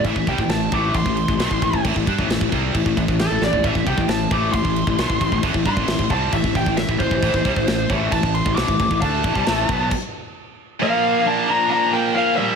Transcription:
<<
  \new Staff \with { instrumentName = "Lead electric guitar" } { \time 4/4 \key a \phrygian \tempo 4 = 134 e''8 g''8 a''8 d'''8 c'''2 | r2. a'8 d''8 | e''8 g''8 a''8 d'''8 c'''2 | r8 c'''4 a''8 e''8 g''8 e''8 c''8~ |
c''4. r8 a''8 c'''8 d'''4 | a''2 r2 | f''4 a''8 bes''8 bes''8 g''8 f''8 e''8 | }
  \new Staff \with { instrumentName = "Lead electric guitar" } { \time 4/4 \key a \phrygian r1 | r1 | r1 | r1 |
r1 | r1 | bes4 d'8 d'8 d'8 bes8 bes8 g8 | }
  \new Staff \with { instrumentName = "Distorted electric guitar" } { \clef bass \time 4/4 \key a \phrygian <a, e>16 <a, e>16 <c g>16 <a, e>16 <a, e>8 <a, e a>8 <a, e>16 <a, e>8 <a, e>16 <b, fis>16 <a, e>16 <a, e>16 <a, e>16 | <a, e>16 <a, e>16 <g d'>16 <a, e>16 <a, e>16 <a, e>16 <c g c'>8 <a, e>16 <a, e>16 <a, e>16 <a, e>8 <a, e>16 <a, e>16 <a, e>16 | <a, e>16 <a, e>16 <c g>16 <a, e>16 <a, e>8 <a, e a>8 <a, e>16 <a, e>8 <a, e>16 <b, fis>16 <a, e>16 <a, e>16 <a, e>16 | <a, e>16 <a, e>16 <g d'>16 <a, e>16 <a, e>16 <a, e>16 <c g c'>8 <a, e>16 <a, e>16 <a, e>16 <a, e>8 <a, e>16 <a, e>16 <a, e>16 |
<a, e>16 <a, e>16 <c g>16 <a, e>16 <a, e>8 <a, e a>8 <a, e>16 <a, e>8 <a, e>16 <b, fis>16 <a, e>16 <a, e>16 <a, e>16 | <d a d'>8 <a, e>16 <c g>16 <a, e a>8 <b, fis b>8 r2 | <bes, f bes>2.~ <bes, f bes>8 <bes, f bes>8 | }
  \new Staff \with { instrumentName = "Distorted electric guitar" } { \clef bass \time 4/4 \key a \phrygian <a, e>16 <a, e>16 <c g>16 <a, e>16 <a, e>8 <a, e a>8 <a, e>16 <a, e>8 <a, e>16 <b, fis>16 <a, e>16 <a, e>16 <a, e>16 | <a, e>16 <a, e>16 <g d'>16 <a, e>16 <a, e>16 <a, e>16 <c g c'>8 <a, e>16 <a, e>16 <a, e>16 <a, e>8 <a, e>16 <a, e>16 <a, e>16 | <a, e>16 <a, e>16 <c g>16 <a, e>16 <a, e>8 <a, e a>8 <a, e>16 <a, e>8 <a, e>16 <b, fis>16 <a, e>16 <a, e>16 <a, e>16 | <a, e>16 <a, e>16 <g d'>16 <a, e>16 <a, e>16 <a, e>16 <c g c'>8 <a, e>16 <a, e>16 <a, e>16 <a, e>8 <a, e>16 <a, e>16 <a, e>16 |
<a, e>16 <a, e>16 <c g>16 <a, e>16 <a, e>8 <a, e a>8 <a, e>16 <a, e>8 <a, e>16 <b, fis>16 <a, e>16 <a, e>16 <a, e>16 | <d a d'>8 <a, e>16 <c g>16 <a, e a>8 <b, fis b>8 r2 | <bes, f bes>4. <bes, f bes>4. <bes, f bes>4 | }
  \new Staff \with { instrumentName = "Fingered electric bass" } { \clef bass \time 4/4 \key a \phrygian a,,16 a,,16 c,16 a,,16 a,,8 a,,8 a,,16 a,,8 a,,16 b,,16 a,,16 a,,16 a,,16 | a,,16 a,,16 g,16 a,,16 a,,16 a,,16 c,8 a,,16 a,,16 a,,16 a,,8 a,,16 a,,16 a,,16 | a,,16 a,,16 c,16 a,,16 a,,8 a,,8 a,,16 a,,8 a,,16 b,,16 a,,16 a,,16 a,,16 | a,,16 a,,16 g,16 a,,16 a,,16 a,,16 c,8 a,,16 a,,16 a,,16 a,,8 a,,16 a,,16 a,,16 |
a,,16 a,,16 c,16 a,,16 a,,8 a,,8 a,,16 a,,8 a,,16 b,,16 a,,16 a,,16 a,,16 | d,8 a,,16 c,16 a,,8 b,,8 r2 | r1 | }
  \new DrumStaff \with { instrumentName = "Drums" } \drummode { \time 4/4 <cymc bd>16 bd16 <cymc bd>16 bd16 <cymc sn>8 <cymc bd>8 <cymc bd>16 bd16 cymc16 bd16 <cymc sn>16 bd16 <cymc bd>16 bd16 | <cymc bd>16 bd16 <cymc bd>16 bd16 <cymc sn>16 bd16 <cymc bd>8 <cymc bd>16 bd16 <cymc bd>16 bd16 <cymc sn>8 sn16 tomfh16 | <cymc bd>16 bd16 <cymc bd>16 bd16 <cymc sn>8 <cymc bd>8 <cymc bd>16 bd16 cymc16 bd16 <cymc sn>16 bd16 <cymc bd>16 bd16 | <cymc bd>16 bd16 <cymc bd>16 bd16 <cymc sn>16 bd16 <cymc bd>8 <cymc bd>16 bd16 <cymc bd>16 bd16 <cymc sn>16 bd16 <cymc bd>16 bd16 |
<cymc bd>16 bd16 <cymc bd>16 bd16 <cymc sn>8 <cymc bd>8 <cymc bd>16 bd16 cymc16 bd16 <cymc sn>16 bd16 <cymc bd>16 bd16 | <cymc bd>8 <cymc bd>16 bd16 <cymc sn>8 <cymc bd>8 <cymc bd>4 r4 | r4 r4 r4 r4 | }
>>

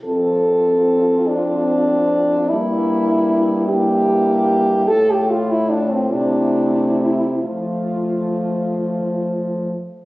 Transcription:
<<
  \new Staff \with { instrumentName = "French horn" } { \time 6/8 \key f \major \tempo 4. = 49 f'2. | e'4. e'4. | f'4. e'4. | f'2~ f'8 r8 | }
  \new Staff \with { instrumentName = "French horn" } { \time 6/8 \key f \major a'4. d'4. | e'4. g'4. | a'16 g'16 f'16 e'16 d'16 c'16 d'4 e'8 | f'4. r4. | }
  \new Staff \with { instrumentName = "French horn" } { \time 6/8 \key f \major c'2. | bes4. bes4. | a4. a4. | a2~ a8 r8 | }
  \new Staff \with { instrumentName = "French horn" } { \clef bass \time 6/8 \key f \major f,2. | g,2. | a,4. c4. | f2~ f8 r8 | }
>>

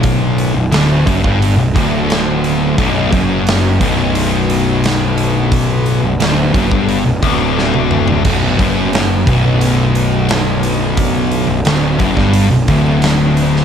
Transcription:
<<
  \new Staff \with { instrumentName = "Analog synth pad" } { \clef bass \time 4/4 \key b \minor \tempo 4 = 88 <d fis b>1~ | <d fis b>1~ | <d fis b>1~ | <d fis b>1~ |
<d fis b>1 | }
  \new Staff \with { instrumentName = "Distorted electric guitar" } { \clef bass \time 4/4 \key b \minor b,,8. b,,16 d,8 fis,16 g,8 b,,16 d,4. | b,,8 fis,4 b,,2~ b,,8~ | b,,8. b,,16 d,8 fis,16 g,8 b,,16 d,4. | b,,8 fis,4 b,,2~ b,,8~ |
b,,8. b,,16 d,8 fis,16 g,8 b,,16 d,4. | }
  \new Staff \with { instrumentName = "Distorted electric guitar" } { \clef bass \time 4/4 \key b \minor b,,8. b,,16 d,8 fis,16 g,8 b,,16 d,4. | b,,8 fis,4 b,,2~ b,,8~ | b,,8. b,,16 d,8 fis,16 g,8 b,,16 d,4. | b,,8 fis,4 b,,2~ b,,8~ |
b,,8. b,,16 d,8 fis,16 g,8 b,,16 d,4. | }
  \new Staff \with { instrumentName = "Distorted electric guitar" } { \clef bass \time 4/4 \key b \minor b,,8. b,,16 d,8 fis,16 g,8 b,,16 d,4. | b,,8 fis,4 b,,2~ b,,8~ | b,,8. b,,16 d,8 fis,16 g,8 b,,16 d,4. | b,,8 fis,4 b,,2~ b,,8~ |
b,,8. b,,16 d,8 fis,16 g,8 b,,16 d,4. | }
  \new Staff \with { instrumentName = "Picked electric bass" } { \clef bass \time 4/4 \key b \minor b,,,8. b,,,16 d,,8 fis,,16 g,,8 b,,,16 d,,4. | b,,,8 fis,,4 b,,,2~ b,,,8~ | b,,,8. b,,,16 d,,8 fis,,16 g,,8 b,,,16 d,,4. | b,,,8 fis,,4 b,,,2~ b,,,8~ |
b,,,8. b,,,16 d,,8 fis,,16 g,,8 b,,,16 d,,4. | }
  \new DrumStaff \with { instrumentName = "Drums" } \drummode { \time 4/4 <hho bd>8 hho8 <hho sn>8 <hho bd>16 bd16 hho8 <hho bd>8 <hho sn>8 hho8 | <hho bd>8 <hho bd>8 <hho sn>8 <hho bd>8 hho8 hho8 <hho sn>8 hho8 | <hho bd>8 hho8 <hho sn>8 <hho bd>16 bd16 hho8 <hho bd>8 sn16 tommh16 toml16 tomfh16 | <cymc hho bd>8 <hho bd>8 <hho sn>8 <hho bd>8 hho8 hho8 <hho sn>8 hho8 |
<hho bd>8 hho8 <hho sn>8 <hho bd>16 <bd sn>16 hho8 <hho bd>8 <hho sn>8 hho16 sn16 | }
>>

